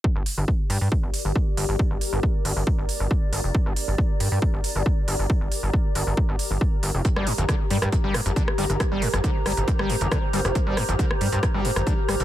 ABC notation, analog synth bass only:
X:1
M:4/4
L:1/16
Q:1/4=137
K:Gm
V:1 name="Analog synth bass" clef=bass
z G,,, z G,,, z2 G,, G,, z G,,, z G,,, z2 G,,, G,,, | z G,,, z G,,, z2 G,,, G,,, z G,,, z G,,, z2 G,,, F,,, | z G,,, z G,,, z2 G,, G,, z G,,, z G,,, z2 G,,, G,,, | z G,,, z G,,, z2 G,,, G,,, z G,,, z G,,, z2 G,,, F,,, |
z G,,, z G,,, z2 G,, G,, z G,,, z G,,, z2 G,,, G,,, | z G,,, z G,,, z2 G,,, G,,, z G,,, z G,,, z2 G,,, F,,, | z G,,, z G,,, z2 G,, G,, z G,,, z G,,, z2 G,,, G,,, |]